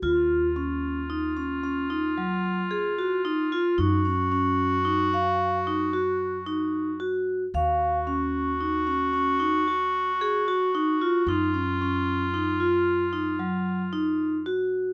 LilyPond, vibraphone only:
\new Staff \with { instrumentName = "Vibraphone" } { \time 7/4 \key ees \minor \tempo 4 = 112 f'4 des'4 ees'8 des'8 des'8 ees'8 ges4 aes'8 ges'8 ees'8 f'8 | ees'8 des'8 des'4 ees'8 f''4 ees'8 ges'4 ees'4 ges'4 | f''4 des'4 ees'8 des'8 des'8 ees'8 ges'4 aes'8 ges'8 ees'8 f'8 | ees'8 des'8 des'4 ees'8 f'4 ees'8 ges4 ees'4 ges'4 | }